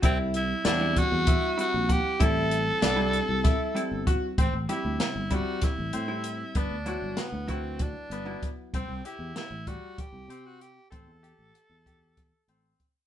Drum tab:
HH |xxxxxxx|xxxxxxx|xxxxxxx|xxxxxxx|
SD |--o----|--o-o--|--o-o--|--o----|
BD |o--oo-o|o---o-o|o--oo--|o--oo-o|

HH |xxxxxxx|xxxxxxx|
SD |--o----|-------|
BD |o--oo--|o--oo-o|